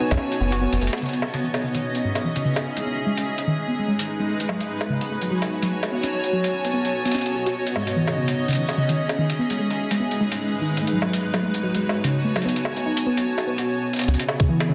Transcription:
Already playing: B3 F#4 C#5
0.11 B1 C#4 D#5, kick, closed hi-hat, high bongo
0.14 high bongo
0.17 high bongo
0.32 closed hi-hat
0.41 F#1 B3
0.52 F#4, closed hi-hat
0.61 B3
0.72 F#1 B3, closed hi-hat
0.81 F#1 A3, closed hi-hat
0.87 closed hi-hat
0.93 F#4, closed hi-hat, high bongo
0.95 closed hi-hat
0.97 closed hi-hat
0.99 C#3 C#4, closed hi-hat
1.02 closed hi-hat
1.06 closed hi-hat
1.09 closed hi-hat
1.13 closed hi-hat
1.19 G#4, high bongo
1.34 C#3, closed hi-hat
1.42 E3 E5
1.54 closed hi-hat, high bongo
1.63 C#3
1.74 D#3, closed hi-hat
1.95 closed hi-hat
2.04 G#2
2.15 closed hi-hat, high bongo
2.24 E3
2.36 C#3, closed hi-hat
2.45 C#3
2.56 closed hi-hat, high bongo
2.65 G#3
2.77 G#3, closed hi-hat
2.86 B3
3.06 G#3 D#4
3.18 closed hi-hat
3.24 B4
3.38 closed hi-hat
3.47 D#3
3.67 B3
3.79 G#3
3.88 G#3
3.99 closed hi-hat
4.19 G#3
4.28 A3 F#4
4.40 closed hi-hat
4.45 F#3 C#5, high bongo
4.58 G#3 G#5, closed hi-hat
4.81 closed hi-hat, high bongo
4.89 C#3
5.01 A5, closed hi-hat
5.10 A3
5.22 F#3, closed hi-hat
5.30 F#3
5.42 closed hi-hat, high bongo
5.62 F#3, closed hi-hat
5.71 A3
5.83 closed hi-hat, high bongo
5.92 B3
6.03 C#4, closed hi-hat
6.24 closed hi-hat
6.33 F#3
6.44 closed hi-hat
6.53 D#4 D#5
6.64 B3, closed hi-hat
6.73 B3
6.85 closed hi-hat
7.05 B3, closed hi-hat
7.08 closed hi-hat
7.11 C#4, closed hi-hat
7.14 closed hi-hat
7.18 closed hi-hat
7.21 closed hi-hat
7.26 closed hi-hat
7.35 F#4
7.46 F#4, closed hi-hat
7.55 C#4
7.67 closed hi-hat
7.76 G#2 G#4, high bongo
7.87 closed hi-hat
7.96 E3
8.07 C#3, closed hi-hat, high bongo
8.16 C#3
8.28 closed hi-hat
8.48 C#3, closed hi-hat
8.51 closed hi-hat
8.53 closed hi-hat
8.55 E3, closed hi-hat
8.69 closed hi-hat, high bongo
8.77 C#3
8.89 D#3, closed hi-hat
9.09 closed hi-hat, high bongo
9.18 D#3 G#3
9.30 closed hi-hat
9.39 B3
9.45 D#4 B4
9.50 G#3, closed hi-hat
9.59 G#3
9.70 closed hi-hat
9.91 G#3, closed hi-hat
10.00 B3
10.11 closed hi-hat
10.21 G#3
10.32 G#3, closed hi-hat
10.61 D#3
10.77 closed hi-hat
10.82 A3 F#4
10.87 closed hi-hat
10.93 F#3
10.99 F#3 C#5, high bongo
11.13 closed hi-hat
11.34 F#3, closed hi-hat, high bongo
11.43 A3 G#5
11.54 A5, closed hi-hat
11.63 F#3
11.75 G#3, closed hi-hat
11.89 high bongo
12.04 C#3, closed hi-hat
12.24 A3
12.36 F#3, closed hi-hat, high bongo
12.42 B3, closed hi-hat
12.49 closed hi-hat
12.56 closed hi-hat
12.65 high bongo
12.77 B3, closed hi-hat
12.86 D#4
12.97 closed hi-hat
13.06 B3
13.17 C#4, closed hi-hat
13.38 closed hi-hat, high bongo
13.47 B3
13.58 F#4, closed hi-hat
13.93 closed hi-hat
13.96 closed hi-hat
13.99 closed hi-hat
14.01 closed hi-hat
14.04 closed hi-hat
14.08 C#2 C#3 C#4, closed hi-hat
14.14 closed hi-hat
14.20 closed hi-hat
14.29 high bongo
14.40 C#3, kick, closed hi-hat, mid tom
14.47 E3 G#4
14.60 closed hi-hat, high bongo
14.69 C#3

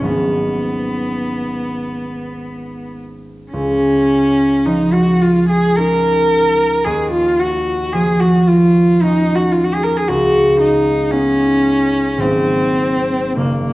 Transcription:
0.01 G#1 F#3 A#3 C#4
0.05 B3 D#4
3.52 C#2 C#4
4.66 F3 D#4
4.93 F#4
5.21 F4
5.49 G#4
5.76 C#4 D#4 A#4
6.84 D#2 G#4
7.11 F4
7.39 F#4
7.93 F3 G#4
8.20 F#4
8.47 F4
9.01 C#4 D#4
9.35 F#4
9.51 F4
9.64 F#4
9.74 G#4
9.83 A#4
9.96 G#4
10.08 C#2 F#4
10.60 D#4
11.11 B3 C#4 D#4
12.18 G#1 F#3 A#3 C4 D#4
13.37 F#1 A#3

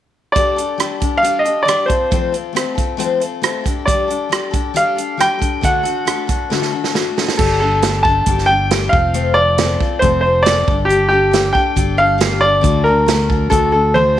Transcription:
0.32 G3 D4 D5, kick, closed hi-hat
0.37 G4 A4
0.56 D4 G4 A4, closed hi-hat
0.78 G3 D4 G4 A4, cross-stick, closed hi-hat
1.00 D4 G4 A4, kick, closed hi-hat
1.18 F5
1.23 G3 D4 G4 A4, closed hi-hat
1.39 D#5
1.45 D4 G4 A4, closed hi-hat
1.63 G3 D5
1.67 D4 G4 A4, cross-stick, closed hi-hat
1.86 F4 A4 C5, kick, closed hi-hat
1.91 C4
2.11 F3 A3 C4 F4 A4, kick, closed hi-hat
2.32 C4 F4 A4, closed hi-hat
2.53 A3 C4 F4 A4, closed hi-hat
2.57 cross-stick
2.75 C4 F4 A4, kick, closed hi-hat
2.97 F3 A3 C4 F4 A4, closed hi-hat
3.20 C4 F4 A4, closed hi-hat
3.42 A3 C4 F4 A4, cross-stick, closed hi-hat
3.64 D4 G4 A4, kick, closed hi-hat
3.85 G3 D4 G4 A4 D5, kick, closed hi-hat
4.08 D4 G4 A4, closed hi-hat
4.29 G3 D4 G4 A4, cross-stick, closed hi-hat
4.51 D4 G4 A4, kick, closed hi-hat
4.74 G3 D4 G4 A4 F5, closed hi-hat
4.96 D4 G4 A4, closed hi-hat
5.17 G3 D4 G4 A4 G5, cross-stick, closed hi-hat
5.39 D4 G4 A4, kick, closed hi-hat
5.61 D3 A3 D4 F#4 A4 F#5, kick, closed hi-hat
5.83 D4 F#4 A4, closed hi-hat
6.05 A3 D4 F#4 A4, cross-stick, closed hi-hat
6.27 D4 F#4 A4, kick, closed hi-hat
6.50 D3 A3 D4 F#4 A4, snare
6.62 snare
6.72 D4 F#4 A4
6.84 snare
6.94 A3 D4 F#4 A4, snare
7.17 D4 F#4 A4, snare
7.28 snare
7.37 G1 G3 D4 G4 A4, kick, crash
7.60 D4 G4 A4
7.82 G3 D4 G4 A4, snare, closed hi-hat
8.03 G4 A4 A5, kick
8.08 D4
8.26 G1 G3 D4 G4 A4, kick, closed hi-hat
8.38 snare
8.46 G4 A4 G5
8.51 D4
8.71 G3 D4 G4 A4, snare, closed hi-hat
8.89 F1 A4 F5, kick
8.94 C4 F4
9.14 F3 A3 C4 F4 A4, closed hi-hat
9.34 F4 A4 D5
9.38 C4
9.58 A3 C4 F4 A4, snare, closed hi-hat
9.80 C4 F4 A4, kick
9.99 F1 F3 A3 C4 C5, kick, closed hi-hat
10.03 F4 A4
10.21 A4 C5
10.25 C4 F4
10.43 A3 C4 D5, closed hi-hat
10.47 F4 A4, snare
10.67 G1 D4 G4 A4, kick
10.85 G4
10.89 G3 D4 G4 A4, closed hi-hat
11.09 G4 A4
11.13 D4
11.31 G3 D4 G4 A4, snare, closed hi-hat
11.53 G4 A4 G5, kick
11.57 D4
11.76 G1 G3 D4 G4 A4, kick, closed hi-hat
11.97 D4 G4 A4 F5
12.18 G3 D4 G4 A4, snare, closed hi-hat
12.41 G4 A4 D5
12.45 D4
12.61 D2 D3 A3 D4 F#4 A4, kick, closed hi-hat
12.84 F#4 A4 A#4
12.89 D4
13.06 A3 D4 F#4 A4, snare, closed hi-hat
13.29 D4 F#4 A4, kick
13.50 D2 D3 A3 D4 F#4 A4, kick, closed hi-hat
13.72 D4 F#4 A4
13.94 A3 D4 F#4 A4 C5, high tom

